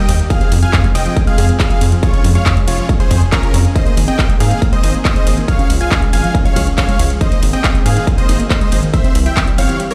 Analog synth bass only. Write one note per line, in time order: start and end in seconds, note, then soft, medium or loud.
0.09 0.22 D#2 loud
0.52 0.65 F2 loud
0.73 0.87 F2 loud
0.95 1.08 F1 loud
1.38 1.51 F2 loud
1.81 1.95 F2 loud
2.24 2.38 F2 loud
2.46 2.59 F2 loud
2.68 2.81 F1 loud
3.11 3.24 F2 medium
3.54 3.67 F2 medium
3.97 4.10 G#1 loud
4.19 4.32 G#1 loud
4.40 4.54 G#2 loud
4.83 4.97 G#1 loud
5.27 5.40 G#1 loud
5.70 5.83 C#2 loud
5.91 6.05 C#2 loud
6.13 6.26 G#1 loud
6.56 6.69 C#2 loud
6.99 7.13 C#2 loud
7.42 7.56 G#1 loud
7.64 7.77 G#1 loud
7.86 7.99 G#2 loud
8.29 8.42 G#1 loud
8.72 8.85 G#1 loud
9.15 9.28 C2 loud
9.37 9.50 C2 loud
9.58 9.72 G1 loud